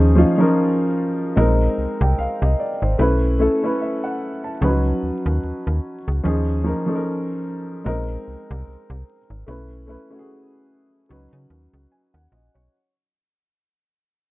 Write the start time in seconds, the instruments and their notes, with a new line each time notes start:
Already playing: fm bass D#2, upright piano F3 C#4 D#4 G#4
0.15 upright piano F3 C#4 D#4 F4
0.38 upright piano F3 C#4 D#4 A#4
1.36 fm bass A#1, upright piano G#3 C4 D#4 A#4
1.78 fm bass C2
2.01 fm bass C2, upright piano G5
2.19 fm bass C2, upright piano F5
2.42 fm bass C2, upright piano D#5
2.60 upright piano D5
2.82 fm bass G#1, upright piano C5
2.98 fm bass B1, upright piano A3 C#4 E4 B4
3.39 upright piano A3 C#4 E4 A4
3.63 upright piano A3 C#4 E4 B4
3.81 upright piano E5
4.04 upright piano F#5
4.44 upright piano A5
4.61 fm bass C#2, upright piano F3 C#4 D#4 B4
4.68 upright piano F#3
5.03 fm bass D#2
5.26 fm bass D#2
5.44 fm bass D#2
5.67 fm bass D#2
6.08 fm bass C#2
6.23 fm bass D#2, upright piano F3 C#4 D#4 G#4
6.64 upright piano F3 C#4 D#4 A#4
6.86 upright piano F3 C#4 D#4 A4
6.96 upright piano A#4
7.84 fm bass A#1, upright piano G#3 C4 D#4 A#4
8.28 fm bass C2
8.51 fm bass C2
8.68 fm bass C2
8.90 fm bass C2
9.30 fm bass G#1
9.46 fm bass B1, upright piano A3 C#4 E4 B4
9.87 upright piano A3 C#4 E4 B4
10.10 upright piano A3 C#4 E4 F#4
10.19 upright piano G#4
11.09 fm bass C#2, upright piano F#3 C#4 D#4 B4
11.33 fm bass C#3
11.50 fm bass D#2
11.74 fm bass C#2
11.92 upright piano G#5
12.14 fm bass D#2, upright piano F#5
12.32 fm bass A#1, upright piano D#5
12.54 fm bass B1, upright piano C#5